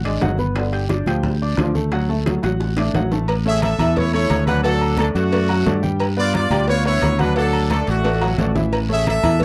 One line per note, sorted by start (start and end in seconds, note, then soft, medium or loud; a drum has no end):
0.04 0.20 G#1 medium
0.04 0.33 G#3 medium
0.04 0.19 D4 medium
0.04 0.19 D5 medium
0.04 0.19 D6 medium
0.04 high bongo soft
0.04 high conga soft
0.04 high timbale medium
0.21 1.01 G1 medium
0.21 0.36 F#3 medium
0.21 0.36 F#4 medium
0.21 0.36 F#5 medium
0.21 high bongo medium
0.21 low bongo medium
0.21 high conga medium
0.21 high timbale medium
0.21 low timbale medium
0.21 short guiro medium
0.38 0.67 B3 medium
0.38 0.67 B4 medium
0.38 0.67 B5 medium
0.38 high bongo soft
0.38 high conga medium
0.38 short guiro medium
0.55 0.83 D3 medium
0.55 high bongo medium
0.55 high conga soft
0.55 high timbale medium
0.55 long guiro medium
0.72 0.87 G4 medium
0.72 0.87 G5 medium
0.72 0.87 G6 medium
0.72 high conga soft
0.72 high timbale medium
0.89 1.03 D4 medium
0.89 1.03 D5 medium
0.89 1.04 D6 medium
0.89 high bongo medium
0.89 high conga medium
0.89 high timbale medium
0.89 low timbale medium
0.89 short guiro medium
1.06 1.54 D2 medium
1.06 1.34 F3 medium
1.06 1.35 G4 medium
1.06 1.35 G5 medium
1.06 1.35 G6 medium
1.06 high conga soft
1.06 low conga medium
1.06 high timbale medium
1.06 short guiro medium
1.23 high bongo medium
1.23 high conga soft
1.23 low conga medium
1.23 long guiro medium
1.41 1.69 D4 medium
1.41 1.70 D5 medium
1.41 1.70 D6 medium
1.41 high conga soft
1.57 2.37 D2 medium
1.57 1.76 F3 medium
1.57 high bongo medium
1.57 low bongo medium
1.57 high conga medium
1.57 high timbale medium
1.57 low timbale medium
1.57 short guiro medium
1.75 1.89 A3 medium
1.75 1.89 A4 medium
1.75 1.89 A5 medium
1.75 high conga medium
1.75 short guiro medium
1.91 2.06 F#3 medium
1.91 2.06 F#4 medium
1.91 2.06 F#5 medium
1.91 high bongo medium
1.91 high timbale medium
1.91 long guiro medium
2.09 2.18 A3 medium
2.09 2.37 A3 medium
2.09 2.37 A4 medium
2.09 2.37 A5 medium
2.09 high conga soft
2.26 2.54 F#3 medium
2.26 high bongo medium
2.26 high conga medium
2.26 high timbale medium
2.26 low timbale medium
2.26 short guiro medium
2.43 2.91 A1 medium
2.43 2.71 F#4 medium
2.43 2.71 F#5 medium
2.43 2.71 F#6 medium
2.43 high bongo medium
2.43 high conga soft
2.43 high timbale medium
2.43 short guiro medium
2.60 high bongo medium
2.60 high conga soft
2.60 long guiro medium
2.77 3.05 A3 medium
2.77 2.92 D4 medium
2.77 2.92 D5 medium
2.77 2.92 D6 medium
2.77 low bongo loud
2.77 high conga soft
2.77 high timbale medium
2.94 3.73 A1 medium
2.94 3.09 F#3 medium
2.94 3.09 F#4 medium
2.94 3.09 F#5 medium
2.94 low bongo medium
2.94 high conga medium
2.94 high timbale medium
2.94 low timbale medium
2.94 short guiro medium
3.11 3.25 A3 medium
3.11 3.25 A4 medium
3.11 3.26 A5 medium
3.11 low bongo medium
3.11 short guiro medium
3.28 cowbell loud
3.28 high conga soft
3.28 low agogo loud
3.28 long guiro medium
3.46 3.73 A3 medium
3.46 3.63 G#4 medium
3.46 3.73 A4 medium
3.46 3.74 C#5 medium
3.46 3.61 E5 loud
3.46 high conga soft
3.62 3.94 A4 medium
3.62 3.94 E5 loud
3.62 cowbell medium
3.62 high conga loud
3.62 low timbale medium
3.62 low agogo medium
3.62 short guiro medium
3.79 4.26 E2 loud
3.79 3.93 E3 loud
3.79 3.94 E4 medium
3.79 3.94 E5 medium
3.79 cowbell medium
3.79 high conga soft
3.79 low conga medium
3.79 low agogo loud
3.79 short guiro medium
3.96 4.10 A3 medium
3.96 4.14 E4 medium
3.96 4.11 A4 medium
3.96 4.12 C#5 loud
3.96 4.11 C#5 medium
3.96 cowbell loud
3.96 high conga soft
3.96 low conga medium
3.96 long guiro medium
4.13 4.42 A3 medium
4.13 4.46 E4 medium
4.13 4.42 A4 medium
4.13 4.45 C#5 loud
4.13 4.42 C#5 medium
4.13 high conga soft
4.13 low agogo medium
4.30 5.09 D2 medium
4.30 cowbell medium
4.30 high conga medium
4.30 low timbale medium
4.30 low agogo loud
4.30 short guiro medium
4.46 4.62 F#3 medium
4.46 4.64 D4 medium
4.46 4.62 F#4 medium
4.46 4.63 B4 loud
4.46 4.62 F#5 loud
4.46 cowbell medium
4.46 high conga medium
4.46 low agogo medium
4.46 short guiro medium
4.63 4.92 F#3 medium
4.63 4.96 D4 medium
4.63 4.93 F#4 medium
4.63 4.95 A4 loud
4.63 4.93 F#5 medium
4.63 cowbell loud
4.63 high conga soft
4.63 long guiro medium
4.81 high conga soft
4.81 low agogo medium
4.97 5.27 A3 medium
4.97 5.07 A4 medium
4.97 5.27 A4 medium
4.97 5.27 D5 medium
4.97 cowbell medium
4.97 high conga loud
4.97 low timbale medium
4.97 low agogo loud
4.97 short guiro medium
5.01 5.08 D4 medium
5.15 5.62 F#2 medium
5.15 5.80 A3 medium
5.15 5.79 F#4 medium
5.15 cowbell medium
5.15 short guiro medium
5.32 5.46 A3 medium
5.32 5.47 A4 medium
5.32 5.47 D5 medium
5.32 cowbell loud
5.32 high conga soft
5.32 low agogo medium
5.32 long guiro medium
5.49 5.63 F#3 medium
5.49 5.63 F#4 medium
5.49 5.64 F#5 medium
5.49 high conga soft
5.49 low agogo loud
5.66 6.46 G2 medium
5.66 5.80 A3 medium
5.66 5.80 A4 medium
5.66 5.80 D5 medium
5.66 cowbell medium
5.66 high conga medium
5.66 low timbale medium
5.66 short guiro medium
5.83 6.11 G3 medium
5.83 6.11 G4 medium
5.83 6.11 G5 medium
5.83 high conga medium
5.83 short guiro medium
6.00 cowbell loud
6.00 high conga soft
6.00 low agogo loud
6.00 long guiro medium
6.17 6.45 B3 medium
6.17 6.34 F4 medium
6.17 6.45 B4 medium
6.17 6.45 D5 medium
6.17 6.34 D5 loud
6.17 high conga soft
6.34 6.67 F4 medium
6.34 6.66 D5 loud
6.34 cowbell medium
6.34 high conga loud
6.34 low timbale medium
6.34 low agogo medium
6.34 short guiro medium
6.50 6.98 D2 loud
6.50 6.65 G3 loud
6.50 6.65 G4 medium
6.50 6.65 G5 medium
6.50 cowbell medium
6.50 high conga soft
6.50 low conga medium
6.50 low agogo loud
6.50 short guiro medium
6.68 6.82 B3 medium
6.68 6.85 F4 medium
6.68 6.82 B4 medium
6.68 6.84 C#5 loud
6.68 6.82 D5 medium
6.68 cowbell loud
6.68 high conga soft
6.68 long guiro medium
6.85 7.13 B3 medium
6.85 7.14 D4 medium
6.85 7.18 E4 medium
6.85 7.13 B4 medium
6.85 7.17 C#5 loud
6.85 high conga soft
6.85 low agogo medium
7.01 7.81 D2 medium
7.01 cowbell medium
7.01 high conga medium
7.01 low timbale medium
7.01 low agogo loud
7.01 short guiro medium
7.19 7.33 F#3 medium
7.19 7.37 D4 medium
7.19 7.33 F#4 medium
7.19 7.37 B4 loud
7.19 7.34 F#5 medium
7.19 cowbell medium
7.19 high conga medium
7.19 low agogo medium
7.19 short guiro medium
7.36 7.64 F#3 medium
7.36 7.69 D4 medium
7.36 7.64 F#4 medium
7.36 7.68 A4 loud
7.36 7.65 F#5 medium
7.36 cowbell loud
7.36 high conga soft
7.36 long guiro medium
7.53 high conga soft
7.53 low agogo medium
7.70 7.99 A3 medium
7.70 7.87 D4 medium
7.70 7.87 A4 medium
7.70 7.99 A4 medium
7.70 7.99 D5 medium
7.70 cowbell medium
7.70 high conga medium
7.70 high timbale medium
7.70 low agogo loud
7.70 short guiro medium
7.87 8.35 A1 loud
7.87 8.53 A3 medium
7.87 8.53 F#4 medium
7.87 cowbell medium
7.87 short guiro medium
8.04 8.18 A3 medium
8.04 8.19 A4 medium
8.04 8.19 D5 medium
8.04 cowbell loud
8.04 high conga soft
8.04 low timbale medium
8.04 low agogo medium
8.04 long guiro medium
8.21 8.36 F#3 medium
8.21 8.36 F#4 medium
8.21 8.36 F#5 medium
8.21 high conga soft
8.21 low timbale loud
8.21 low agogo loud
8.38 9.18 A1 medium
8.38 8.53 A3 medium
8.38 8.53 A4 medium
8.38 8.53 D5 medium
8.38 cowbell medium
8.38 high conga medium
8.38 low timbale medium
8.38 short guiro medium
8.55 8.83 E3 medium
8.55 8.83 E4 medium
8.55 8.84 E5 medium
8.55 high conga medium
8.55 low timbale medium
8.55 short guiro medium
8.73 cowbell loud
8.73 high conga soft
8.73 low agogo loud
8.73 long guiro medium
8.89 9.17 A3 medium
8.89 9.07 G#4 medium
8.89 9.17 A4 medium
8.89 9.17 C#5 medium
8.89 9.07 E5 loud
8.89 high conga soft
9.07 9.39 A4 medium
9.07 9.39 E5 loud
9.07 cowbell medium
9.07 high conga medium
9.07 low timbale medium
9.07 low agogo medium
9.07 short guiro medium
9.23 9.45 E2 medium
9.23 9.38 E3 medium
9.23 9.38 E4 medium
9.23 9.38 E5 loud
9.23 cowbell medium
9.23 high conga soft
9.23 low conga medium
9.23 low agogo loud
9.23 short guiro medium
9.40 9.45 A3 medium
9.40 9.45 A4 medium
9.40 9.45 C#5 medium
9.40 cowbell loud
9.40 high conga soft
9.40 low conga medium
9.40 long guiro medium